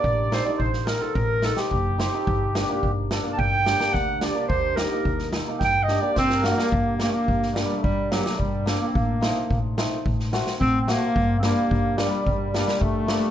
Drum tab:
SD |--o--oo---oo--o-|--o---o---ooo-o-|--o--oo-o-o-oooo|--o--oo---oo--o-|
BD |o---o---o---o---|o---o---o---o---|o---o---o---o---|o---o---o---o---|

SD |--o---o--oooo-o-|--o---o---oo--o-|
BD |o---o---o---o---|o---o---o---o---|